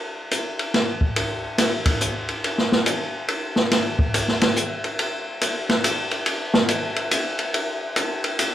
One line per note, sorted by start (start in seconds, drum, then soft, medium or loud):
0.31 hi-hat pedal medium
0.31 ride medium
0.59 ride soft
0.74 snare soft
0.74 ride medium
1.01 kick soft
1.16 ride medium
1.58 snare soft
1.58 hi-hat pedal medium
1.58 ride medium
1.86 kick medium
1.86 ride medium
2.01 hi-hat pedal medium
2.29 ride soft
2.44 ride medium
2.58 snare soft
2.72 snare soft
2.86 hi-hat pedal medium
2.86 ride medium
3.28 ride medium
3.56 snare soft
3.71 snare soft
3.71 ride medium
3.99 kick medium
4.14 hi-hat pedal soft
4.14 ride medium
4.28 snare soft
4.41 snare soft
4.41 ride medium
4.56 hi-hat pedal medium
4.84 ride soft
4.99 ride medium
5.41 hi-hat pedal medium
5.41 ride medium
5.69 snare soft
5.69 ride soft
5.84 hi-hat pedal medium
5.84 ride medium
6.11 ride soft
6.26 ride medium
6.54 snare medium
6.68 hi-hat pedal medium
6.68 ride medium
6.96 ride soft
7.11 hi-hat pedal medium
7.11 ride medium
7.39 ride soft
7.54 ride medium
7.96 hi-hat pedal medium
7.96 ride medium
8.24 ride soft
8.39 hi-hat pedal medium
8.39 ride medium